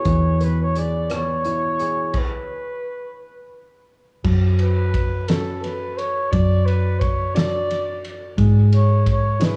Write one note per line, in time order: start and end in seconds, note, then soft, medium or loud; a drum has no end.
0.00 0.40 B3 soft
0.00 0.71 E4 medium
0.00 0.76 G#4 medium
0.00 0.45 C#5 medium
0.05 2.10 E2 medium
0.05 2.10 E3 medium
0.05 kick medium
0.05 closed hi-hat medium
0.40 1.09 B3 soft
0.40 0.59 B4 medium
0.40 closed hi-hat soft
0.62 0.79 C#5 medium
0.76 1.78 G#4 soft
0.76 1.16 D5 medium
0.76 closed hi-hat soft
1.10 2.11 B3 medium
1.10 cross-stick medium
1.10 closed hi-hat medium
1.14 2.20 C#5 medium
1.45 2.12 E4 medium
1.45 closed hi-hat soft
1.80 2.13 G#4 medium
1.80 closed hi-hat soft
2.13 kick medium
2.13 crash medium
2.18 3.56 B4 medium
4.24 6.28 F#2 medium
4.24 6.27 F#3 medium
4.24 kick medium
4.24 crash medium
4.59 5.30 B4 medium
4.59 ride medium
4.94 kick medium
4.94 ride medium
5.28 6.29 C#4 soft
5.28 6.29 F#4 soft
5.28 5.62 A4 medium
5.28 6.29 A4 medium
5.28 snare medium
5.28 ride medium
5.63 5.99 B4 medium
5.63 ride soft
5.98 6.33 C#5 loud
5.98 ride soft
6.32 8.33 F#2 medium
6.32 8.33 F#3 medium
6.32 6.67 D5 loud
6.32 kick medium
6.32 ride medium
6.65 7.01 B4 medium
6.65 ride soft
7.00 7.36 C#5 medium
7.00 kick medium
7.00 ride soft
7.34 8.33 D4 soft
7.34 8.34 F#4 soft
7.34 8.11 D5 loud
7.34 8.34 D5 medium
7.34 snare medium
7.34 ride medium
7.70 ride soft
8.04 ride soft
8.37 9.56 G#2 medium
8.37 9.56 G#3 medium
8.37 kick medium
8.37 ride medium
8.72 9.04 C#5 medium
8.72 ride medium
9.06 9.40 C#5 medium
9.06 kick medium
9.06 ride medium
9.40 9.56 D4 medium
9.40 9.56 E4 medium
9.40 9.56 G#4 soft
9.40 9.56 B4 medium
9.40 snare medium
9.40 ride medium